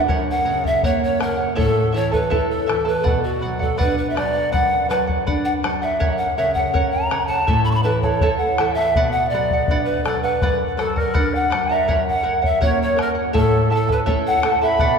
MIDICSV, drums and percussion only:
0, 0, Header, 1, 2, 480
1, 0, Start_track
1, 0, Key_signature, 2, "minor"
1, 0, Tempo, 738007
1, 62, Time_signature, 2, 2, 24, 8
1, 5342, Tempo, 729927
1, 9796, End_track
2, 0, Start_track
2, 0, Title_t, "Bombo"
2, 60, Note_on_c, 9, 43, 69
2, 125, Note_off_c, 9, 43, 0
2, 423, Note_on_c, 9, 43, 53
2, 488, Note_off_c, 9, 43, 0
2, 542, Note_on_c, 9, 43, 66
2, 607, Note_off_c, 9, 43, 0
2, 784, Note_on_c, 9, 37, 54
2, 849, Note_off_c, 9, 37, 0
2, 1029, Note_on_c, 9, 43, 67
2, 1094, Note_off_c, 9, 43, 0
2, 1391, Note_on_c, 9, 43, 52
2, 1456, Note_off_c, 9, 43, 0
2, 1510, Note_on_c, 9, 43, 68
2, 1575, Note_off_c, 9, 43, 0
2, 1753, Note_on_c, 9, 37, 57
2, 1818, Note_off_c, 9, 37, 0
2, 1991, Note_on_c, 9, 43, 75
2, 2056, Note_off_c, 9, 43, 0
2, 2356, Note_on_c, 9, 43, 57
2, 2421, Note_off_c, 9, 43, 0
2, 2475, Note_on_c, 9, 43, 65
2, 2540, Note_off_c, 9, 43, 0
2, 2714, Note_on_c, 9, 37, 55
2, 2779, Note_off_c, 9, 37, 0
2, 2952, Note_on_c, 9, 43, 68
2, 3017, Note_off_c, 9, 43, 0
2, 3194, Note_on_c, 9, 37, 46
2, 3259, Note_off_c, 9, 37, 0
2, 3311, Note_on_c, 9, 43, 55
2, 3376, Note_off_c, 9, 43, 0
2, 3432, Note_on_c, 9, 43, 66
2, 3497, Note_off_c, 9, 43, 0
2, 3670, Note_on_c, 9, 37, 58
2, 3735, Note_off_c, 9, 37, 0
2, 3911, Note_on_c, 9, 43, 67
2, 3976, Note_off_c, 9, 43, 0
2, 4266, Note_on_c, 9, 43, 54
2, 4331, Note_off_c, 9, 43, 0
2, 4389, Note_on_c, 9, 43, 69
2, 4454, Note_off_c, 9, 43, 0
2, 4626, Note_on_c, 9, 37, 51
2, 4692, Note_off_c, 9, 37, 0
2, 4864, Note_on_c, 9, 43, 69
2, 4930, Note_off_c, 9, 43, 0
2, 5223, Note_on_c, 9, 43, 50
2, 5288, Note_off_c, 9, 43, 0
2, 5340, Note_on_c, 9, 43, 71
2, 5406, Note_off_c, 9, 43, 0
2, 5586, Note_on_c, 9, 37, 59
2, 5651, Note_off_c, 9, 37, 0
2, 5830, Note_on_c, 9, 43, 67
2, 5896, Note_off_c, 9, 43, 0
2, 6190, Note_on_c, 9, 43, 57
2, 6256, Note_off_c, 9, 43, 0
2, 6306, Note_on_c, 9, 43, 74
2, 6372, Note_off_c, 9, 43, 0
2, 6554, Note_on_c, 9, 37, 57
2, 6619, Note_off_c, 9, 37, 0
2, 6792, Note_on_c, 9, 43, 73
2, 6858, Note_off_c, 9, 43, 0
2, 7037, Note_on_c, 9, 37, 49
2, 7102, Note_off_c, 9, 37, 0
2, 7156, Note_on_c, 9, 43, 55
2, 7222, Note_off_c, 9, 43, 0
2, 7273, Note_on_c, 9, 43, 72
2, 7338, Note_off_c, 9, 43, 0
2, 7519, Note_on_c, 9, 37, 53
2, 7585, Note_off_c, 9, 37, 0
2, 7759, Note_on_c, 9, 43, 62
2, 7825, Note_off_c, 9, 43, 0
2, 8121, Note_on_c, 9, 43, 55
2, 8187, Note_off_c, 9, 43, 0
2, 8239, Note_on_c, 9, 43, 68
2, 8305, Note_off_c, 9, 43, 0
2, 8482, Note_on_c, 9, 37, 53
2, 8548, Note_off_c, 9, 37, 0
2, 8719, Note_on_c, 9, 43, 66
2, 8785, Note_off_c, 9, 43, 0
2, 9078, Note_on_c, 9, 43, 57
2, 9144, Note_off_c, 9, 43, 0
2, 9195, Note_on_c, 9, 43, 65
2, 9261, Note_off_c, 9, 43, 0
2, 9432, Note_on_c, 9, 37, 55
2, 9498, Note_off_c, 9, 37, 0
2, 9669, Note_on_c, 9, 43, 65
2, 9735, Note_off_c, 9, 43, 0
2, 9796, End_track
0, 0, End_of_file